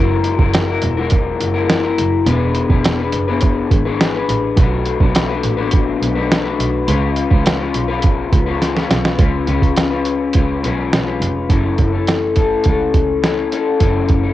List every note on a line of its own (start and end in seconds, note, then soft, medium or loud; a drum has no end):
0.00 0.19 F#1 loud
0.00 0.39 G#3 medium
0.00 0.39 E4 medium
0.00 0.39 F#4 medium
0.00 0.38 A#4 medium
0.24 closed hi-hat medium
0.39 0.74 F#1 medium
0.39 0.69 F#3 medium
0.39 0.69 G#3 medium
0.39 0.69 E4 medium
0.39 0.68 F#4 medium
0.39 0.67 A#4 medium
0.39 kick medium
0.54 snare loud
0.54 closed hi-hat loud
0.68 0.97 E4 soft
0.68 0.97 F#4 medium
0.68 0.96 A#4 medium
0.82 1.29 E1 medium
0.82 closed hi-hat medium
0.97 1.55 F#3 medium
0.97 1.55 G#3 medium
0.97 1.54 E4 medium
0.97 1.53 F#4 medium
0.97 1.53 A#4 medium
1.10 kick medium
1.10 closed hi-hat medium
1.40 1.86 F#1 medium
1.40 closed hi-hat medium
1.54 1.84 F#3 medium
1.54 1.84 G#3 medium
1.54 1.84 E4 medium
1.54 1.83 F#4 medium
1.54 1.82 A#4 medium
1.70 snare loud
1.70 closed hi-hat medium
1.83 2.27 E4 soft
1.83 2.27 F#4 soft
1.83 2.27 A#4 medium
1.98 2.21 F#1 medium
1.98 closed hi-hat medium
2.26 2.50 E1 loud
2.26 2.70 B3 medium
2.26 2.70 D4 medium
2.26 2.70 G#4 medium
2.26 2.69 B4 medium
2.26 closed hi-hat loud
2.55 closed hi-hat medium
2.70 3.04 E1 loud
2.70 3.00 E3 medium
2.70 3.00 B3 medium
2.70 2.99 D4 medium
2.70 2.99 G#4 medium
2.70 2.97 B4 medium
2.70 kick medium
2.84 snare loud
2.84 closed hi-hat loud
2.99 3.28 D4 soft
2.99 3.27 G#4 soft
2.99 3.27 B4 medium
3.12 3.59 F#1 medium
3.12 closed hi-hat medium
3.28 3.86 E3 medium
3.28 3.87 B3 medium
3.28 3.86 D4 medium
3.28 3.85 G#4 medium
3.28 3.85 B4 medium
3.41 kick medium
3.41 closed hi-hat medium
3.71 4.17 G#1 medium
3.71 kick medium
3.71 closed hi-hat medium
3.85 4.15 E3 medium
3.85 4.15 B3 medium
3.85 4.15 D4 medium
3.85 4.14 G#4 medium
3.85 4.13 B4 medium
4.01 snare loud
4.01 closed hi-hat medium
4.14 4.57 D4 soft
4.14 4.58 G#4 medium
4.14 4.58 B4 medium
4.29 4.52 A1 medium
4.29 closed hi-hat medium
4.57 4.80 B1 loud
4.57 5.01 A3 medium
4.57 5.00 D4 medium
4.57 5.00 F#4 medium
4.57 4.99 B4 medium
4.57 kick loud
4.57 closed hi-hat medium
4.85 closed hi-hat medium
5.00 5.35 B1 loud
5.00 5.31 B2 medium
5.00 5.30 F#3 medium
5.00 5.30 A3 medium
5.00 5.29 D4 medium
5.00 5.29 F#4 medium
5.00 5.27 B4 medium
5.00 kick medium
5.15 snare loud
5.15 closed hi-hat loud
5.29 5.57 A3 soft
5.29 5.57 D4 soft
5.29 5.57 F#4 medium
5.29 5.56 B4 medium
5.43 5.90 A1 medium
5.43 closed hi-hat medium
5.57 6.16 B2 medium
5.57 6.15 F#3 medium
5.57 6.15 A3 medium
5.57 6.15 D4 medium
5.57 6.15 F#4 medium
5.57 6.15 B4 medium
5.71 kick medium
5.71 closed hi-hat medium
6.01 6.48 B1 medium
6.01 closed hi-hat medium
6.15 6.45 B2 medium
6.15 6.45 F#3 medium
6.15 6.45 A3 medium
6.15 6.45 D4 medium
6.15 6.44 F#4 medium
6.15 6.42 B4 medium
6.32 snare loud
6.32 closed hi-hat medium
6.44 6.87 A3 soft
6.44 6.88 D4 soft
6.44 6.88 F#4 medium
6.44 6.88 B4 medium
6.60 6.83 B1 medium
6.60 closed hi-hat medium
6.87 7.11 C#2 loud
6.87 7.30 G#3 medium
6.87 7.30 C#4 medium
6.87 7.30 F4 medium
6.87 7.29 B4 medium
6.87 closed hi-hat loud
7.16 closed hi-hat medium
7.30 7.66 C#2 medium
7.30 7.61 C#3 medium
7.30 7.61 F3 medium
7.30 7.60 G#3 medium
7.30 7.60 C#4 medium
7.30 7.59 F4 medium
7.30 7.58 B4 medium
7.30 kick medium
7.46 snare loud
7.46 closed hi-hat loud
7.59 7.89 G#3 soft
7.59 7.88 C#4 soft
7.59 7.88 F4 medium
7.59 7.87 B4 medium
7.74 8.21 B1 medium
7.74 closed hi-hat medium
7.88 8.47 C#3 medium
7.88 8.47 F3 medium
7.88 8.47 G#3 medium
7.88 8.47 C#4 medium
7.88 8.46 F4 medium
7.88 8.46 B4 medium
8.02 kick loud
8.02 closed hi-hat medium
8.33 8.79 C#2 medium
8.33 kick medium
8.33 closed hi-hat medium
8.46 8.76 C#3 medium
8.46 8.76 F3 medium
8.46 8.76 G#3 medium
8.46 8.76 C#4 medium
8.46 8.75 F4 medium
8.46 8.73 B4 medium
8.62 snare medium
8.62 closed hi-hat medium
8.75 9.17 G#3 soft
8.75 9.17 C#4 soft
8.75 9.18 F4 medium
8.75 9.19 B4 medium
8.75 snare medium
8.90 9.13 B1 medium
8.90 snare medium
8.90 closed hi-hat medium
9.05 snare medium
9.18 9.42 C#2 loud
9.18 9.45 G#3 medium
9.18 9.47 C#4 medium
9.18 9.48 F4 medium
9.18 9.48 B4 medium
9.18 kick loud
9.18 closed hi-hat medium
9.47 10.30 C#2 loud
9.47 9.91 G#3 medium
9.47 9.91 C#4 medium
9.47 9.90 F4 medium
9.47 9.89 B4 medium
9.47 closed hi-hat medium
9.62 kick medium
9.62 closed hi-hat soft
9.76 snare loud
9.76 closed hi-hat loud
9.90 10.32 G#3 soft
9.90 10.34 C#4 soft
9.90 10.34 F4 medium
9.90 10.34 B4 medium
10.05 closed hi-hat medium
10.33 10.58 C#2 medium
10.33 10.63 G#3 medium
10.33 10.63 C#4 medium
10.33 10.64 F4 medium
10.33 10.64 B4 medium
10.33 kick medium
10.33 closed hi-hat medium
10.63 10.86 B1 medium
10.63 11.07 C#3 medium
10.63 11.07 F3 medium
10.63 11.07 G#3 medium
10.63 11.07 C#4 medium
10.63 11.06 F4 medium
10.63 11.05 B4 medium
10.63 closed hi-hat medium
10.92 11.20 B1 medium
10.92 snare loud
10.92 closed hi-hat medium
11.06 11.50 G#3 soft
11.06 11.50 C#4 soft
11.06 11.50 F4 medium
11.06 11.50 B4 soft
11.20 11.44 F1 medium
11.20 closed hi-hat medium
11.49 11.73 F#1 medium
11.49 11.93 F#2 medium
11.49 11.93 C#3 medium
11.49 11.93 E3 medium
11.49 11.93 A3 medium
11.49 11.92 C#4 medium
11.49 11.91 A4 medium
11.49 kick medium
11.49 closed hi-hat medium
11.78 12.61 F#1 medium
11.78 kick medium
11.78 closed hi-hat soft
11.92 12.35 E3 soft
11.92 12.36 A3 soft
11.92 12.37 C#4 soft
11.92 12.36 A4 soft
12.07 snare medium
12.07 closed hi-hat medium
12.36 12.64 E3 medium
12.36 12.65 A3 medium
12.36 12.66 C#4 medium
12.36 12.67 A4 medium
12.36 kick medium
12.36 closed hi-hat medium
12.64 12.89 C#2 medium
12.64 13.21 E3 medium
12.64 13.23 A3 medium
12.64 13.23 C#4 medium
12.64 kick medium
12.64 closed hi-hat medium
12.68 13.25 A4 medium
12.94 13.40 C#2 medium
12.94 kick medium
12.94 closed hi-hat medium
13.22 13.50 E3 medium
13.22 13.51 A3 medium
13.22 13.52 C#4 medium
13.22 13.53 A4 medium
13.22 snare medium
13.22 closed hi-hat medium
13.51 13.79 E3 medium
13.51 13.80 A3 medium
13.51 13.80 C#4 medium
13.51 13.80 A4 medium
13.51 closed hi-hat medium
13.80 14.04 F#1 medium
13.80 14.24 F#2 medium
13.80 14.24 C#3 medium
13.80 14.24 E3 medium
13.80 14.24 A3 medium
13.80 14.23 C#4 medium
13.80 14.22 A4 medium
13.80 kick loud
13.80 closed hi-hat medium
14.09 14.33 F#1 medium
14.09 kick medium
14.09 closed hi-hat soft
14.23 14.33 E3 soft
14.23 14.33 A3 soft
14.23 14.33 C#4 soft
14.23 14.33 A4 soft